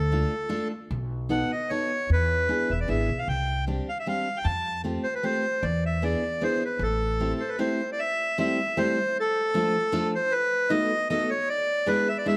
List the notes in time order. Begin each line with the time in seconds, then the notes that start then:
Already playing: D2 A4
0.12 A3 D4 F4 A4
0.49 A3 D4 F4 A4
0.91 B1
1.29 B3 D#4 F#4 A4 F#5
1.52 D#5
1.70 B3 D#4 F#4 A4 C#5
2.10 E2 B4
2.49 B3 D4 E4 G#4
2.70 E1 E5
2.81 D5
2.88 G#1 B3 D4 E4 G#4 E5
3.09 B1
3.19 F5
3.28 C2 G5
3.67 G3 C4 D4 G4
3.89 F5
4.00 E5
4.06 G3 C4 D4 G4 F5
4.37 G5
4.44 F2 A5
4.84 A3 C4 F4 G4
5.04 C5
5.15 B4
5.23 A3 C4 F4 G4 C5
5.62 E2 D5
5.86 E5
6.02 B3 D4 E4 G#4 D5
6.41 B3 D4 E4 G#4 C5
6.65 B4
6.79 A1 A4
7.20 A3 C4 E4 G4
7.40 C5
7.49 B4
7.59 A3 C4 E4 G4 C5
7.92 D5
8.00 E5
8.38 G3 A3 C4 E4 G4 E5
8.77 G3 A3 C4 E4 G4 C5
9.20 A4
9.54 F3 A3 D4 F4 A4
9.92 F3 A3 D4 F4 A4
10.15 C5
10.32 B4
10.70 A3 B3 D#4 F#4 A4 D#5
11.10 A3 B3 D#4 F#4 A4 D#5
11.30 C#5
11.49 D5
11.86 G#3 B3 D4 E4 G#4 B4
12.09 E5
12.18 D5
12.26 G#3 B3 D4 E4 G#4 E5